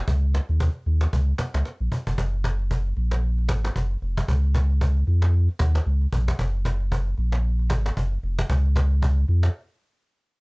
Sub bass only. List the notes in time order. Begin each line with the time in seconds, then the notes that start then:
0.08 C#2
0.49 D#2
0.86 D#2
1.13 C#2
1.54 C#2
1.81 A#1
2.07 F1
2.18 F#1
2.97 A#1
3.50 G#1
3.76 F#1
4.02 F1
4.29 C#2
5.07 F2
5.60 D#2
5.86 C#2
6.13 A#1
6.39 F#1
7.18 A#1
7.70 G#1
7.97 F#1
8.23 F1
8.50 C#2
9.29 F2